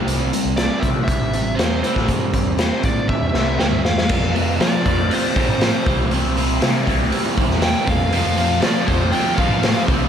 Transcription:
<<
  \new Staff \with { instrumentName = "Lead electric guitar" } { \time 4/4 \key f \major \tempo 4 = 119 r4 d''8 e''8 e''4 c''8. r16 | r4 c''8 d''8 e''4 g''8 f''8~ | f''8 r8 d''4 c''4 c''8. r16 | r2. g''8 f''8~ |
f''4 d''8 c''8 g''8 f''4 r8 | }
  \new Staff \with { instrumentName = "Overdriven electric guitar" } { \clef bass \time 4/4 \key f \major <c g c'>8 <c g>8 <c g>8 <c g c'>8 <c g>8 <c g>8 <c g>8 <c g c'>8 | <c g>8 <c g>8 <c g c'>8 <c g>8 <c g>8 <c g c'>8 <c g>8 <c g>8 | <f a c' f'>8 <f a c' f'>8 <f a c' f'>8 <f a c' f'>8 <f a c' f'>8 <f a c' f'>8 <f a c' f'>8 <c e g c' e'>8 | <c e g c' e'>8 <c e g c' e'>8 <c e g c' e'>8 <c e g c' e'>8 <c e g c' e'>8 <c e g c' e'>8 <c e g c' e'>8 <f a c' f'>8 |
<f a c' f'>8 <f a c' f'>8 <f a c' f'>8 <f a c' f'>8 <f a c' f'>8 <f a c' f'>8 <f a c' f'>8 <c e g c' e'>8 | }
  \new Staff \with { instrumentName = "Distorted electric guitar" } { \clef bass \time 4/4 \key f \major r1 | r1 | r1 | r1 |
<f, c f>2 <f, c f>4. <c g c'>8 | }
  \new Staff \with { instrumentName = "Overdriven electric guitar" } { \clef bass \time 4/4 \key f \major <c g c'>2. <c g c'>8 <c g c'>8~ | <c g c'>2. <c g c'>8 r8 | <f, c f>8 <f, c f>8 <f, c f>8 <f, c f>8 <f, c f>8 <f, c f>8 <f, c f>8 <c g c'>8 | <c g c'>8 <c g c'>8 <c g c'>8 <c g c'>8 <c g c'>8 <c g c'>8 <c g c'>8 <f, c f>8 |
<f, c f>8 <f, c f>8 <f, c f>8 <f, c f>8 <f, c f>8 <f, c f>8 <f, c f>8 <c g c'>8 | }
  \new Staff \with { instrumentName = "Picked electric bass" } { \clef bass \time 4/4 \key f \major c,8 r16 c,8 r16 c8 r16 a,,8. e,8 r16 a,,16 | g,8. e,8 r16 a,8. e,16 c,8 d,8 e,8 | f,16 f,8. f8 f,8 r8. a,8 r16 c,8~ | c,16 c,8. c8 c,8 r8. e,8 r16 f,8~ |
f,16 f,8. f8 f,8 r8. a,8 r16 c,8 | }
  \new DrumStaff \with { instrumentName = "Drums" } \drummode { \time 4/4 hh8 hh8 <hh sn>8 <hh bd>8 <hh bd>8 hh8 <hh sn>8 hh16 <bd sn>16 | <hh bd>8 <hh bd>8 <hh sn>8 <hh bd>8 bd8 sn8 sn16 toml16 sn16 sn16 | <cymc bd>8 hho8 <hho sn>8 <hho bd>8 hho8 <hho bd>8 <hho sn>8 <hho bd>8 | hho8 hho8 <hho sn>8 <hho bd>8 hho8 <hho bd>16 sn16 <hho sn>8 <hho bd>8 |
hho8 hho8 <hho sn>8 <hho bd>8 hho8 <hho bd>8 <hho sn>8 <hho bd>8 | }
>>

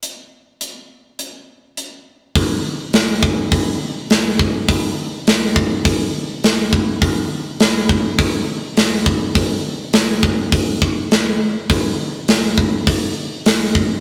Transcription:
\new DrumStaff \with { instrumentName = "Drums" } \drummode { \time 4/4 \tempo 4 = 103 hh4 hh4 hh4 hh4 | <hho bd>4 <hho sn>8 bd8 <hho bd>4 <hho sn>8 bd8 | <hho bd>4 <hho sn>8 bd8 <hho bd>4 <hho sn>8 bd8 | <hho bd>4 <hho sn>8 bd8 <hho bd>4 <hho sn>8 bd8 |
<hho bd>4 <hho sn>8 bd8 <hho bd>8 bd8 <hho sn>4 | <hho bd>4 <hho sn>8 bd8 <hho bd>4 <hho sn>8 bd8 | }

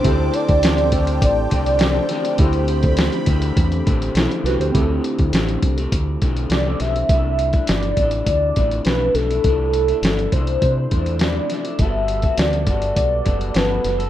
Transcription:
<<
  \new Staff \with { instrumentName = "Analog synth pad" } { \time 4/4 \key c \lydian \tempo 4 = 102 << { <c'' g'' d'''>1~ | <c'' g'' d'''>1 | r1 | r1 |
r1 | r1 | } \\ { a''1 | b''1 | r1 | r1 |
r1 | r1 | } >> }
  \new Staff \with { instrumentName = "Soft synth lead" } { \time 4/4 \key c \lydian c''8 d''4. d''2 | c''2 r2 | r2. d''8 e''8~ | e''4 d''4 d''4 b'8 a'8~ |
a'4. c''4. d''4 | e''4 d''4 d''4 b'4 | }
  \new Staff \with { instrumentName = "Synth keys" } { \time 4/4 \key c \lydian << { r1 | r2. <e' a'>8 <fis' b'>16 <g' c''>16~ | <g' c''>16 r2. r8. | r1 |
r1 | r1 | } \\ { <c' e' g' a'>1 | <c' e' g' a'>1 | <c' e' g' a'>1 | r1 |
r1 | r1 | } >> }
  \new Staff \with { instrumentName = "Clean electric guitar" } { \time 4/4 \key c \lydian <d a c' g'>4. <d a c' g'>4 <d a c' g'>8 <d a c' g'>8 <d a c' g'>8 | <d a c' g'>4. <d a c' g'>4 <d a c' g'>8 <d a c' g'>8 <d a c' g'>8 | <d a c' g'>4 <d a c' g'>8. <a c' g'>8. <d a c' g'>8. <d a c' g'>8. | <c a d' e'>8. <a d' e'>8. <c a d' e'>4 <c a d' e'>8 <c a d' e'>8. <a d' e'>16 |
<c a d' e'>8. <a d' e'>8. <c a d' e'>4 <c a d' e'>8 <c a d' e'>8. <a d' e'>16 | <g b fis' a'>8. <b fis' a'>8. <g b fis' a'>4 <g b fis' a'>8 <g b fis' a'>8. <b fis' a'>16 | }
  \new Staff \with { instrumentName = "Fingered electric bass" } { \clef bass \time 4/4 \key c \lydian d,8 r16 d,4~ d,16 a,,8 c,4 r8 | d,4~ d,16 r16 d,8 e,8 a,,8 b,,16 r16 c,16 d,16 | d,8 r16 d,16 a,,8 c,8 d,8 b,,8 c,8 b,,8 | c,4 g,,8 a,,8 d,8 a,,8 b,,8 b,,8 |
c,4 g,,8 c,8 c8 e,4 r8 | g,,4 d,8 g,,8 b,,8 fis,,8 g,,8 fis,,8 | }
  \new DrumStaff \with { instrumentName = "Drums" } \drummode { \time 4/4 <hh bd>8 hh16 <hh bd>16 <hh sn>16 hh16 <hh bd>16 hh16 <hh bd>8 <hh bd>16 hh16 <hh sn>8 <hh sn>16 hh16 | <hh bd>16 hh16 hh16 <hh bd>16 <hh sn>16 hh16 <hh bd>16 hh16 <hh bd>16 hh16 <hh bd>16 hh16 <hh sn>16 hh16 <hh sn>16 hh16 | <hh bd>8 hh16 <hh bd>16 <hh sn>16 hh16 <hh bd>16 hh16 <hh bd>8 <hh bd>16 hh16 <hh sn>8 <hh sn>16 hh16 | <hh bd>8 hh16 <hh bd>16 <hh sn>16 hh16 <hh bd>16 hh16 <hh bd>8 <hh bd>16 hh16 <hh sn>8 <hh sn>16 hh16 |
<hh bd>8 hh16 hh16 <hh sn>16 hh16 <hh bd>16 hh16 <hh bd>8 <hh bd>16 hh16 <hh sn>8 <hh sn>16 hh16 | <hh bd>8 hh16 <hh bd>16 <hh sn>16 hh16 <hh bd>16 hh16 <hh bd>8 <hh bd>16 hh16 <hh sn>8 <hh sn>16 hh16 | }
>>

